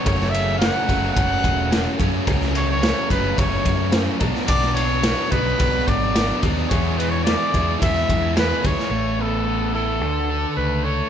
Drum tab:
RD |x-x-x-x-x-x-x-x-|x-x-x-x-x-x-x-x-|x-x-x-x-x-x-x-x-|x-x-x-x-x-x-x-x-|
SD |-o--o-------o---|-o--o-------o--o|-o--o-------o---|----o-------o--o|
BD |o-----o-o-o---o-|o-----o-o-o---o-|o-----o-o-o---o-|o-----o-o-o---o-|

RD |----------------|
SD |----------------|
BD |----------------|